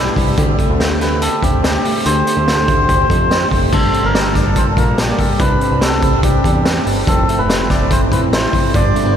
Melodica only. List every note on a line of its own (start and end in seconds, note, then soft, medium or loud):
0.00 0.13 E4 medium
1.01 1.22 B4 medium
1.21 1.43 A4 medium
1.43 1.62 G4 medium
1.63 2.06 G4 medium
2.05 3.48 C5 loud
3.73 4.05 A4 medium
4.05 4.37 A#4 medium
4.36 4.57 D5 medium
4.57 4.66 C5 medium
4.78 4.99 A#4 medium
4.99 5.42 G4 medium
5.40 5.83 B4 loud
5.82 6.21 A4 medium
6.24 6.82 G4 medium
7.08 7.40 A4 medium
7.38 7.71 B4 medium
7.70 7.91 D5 medium
7.91 8.01 C5 medium
8.12 8.21 B4 medium
8.34 8.76 C5 medium
8.75 9.14 D5 loud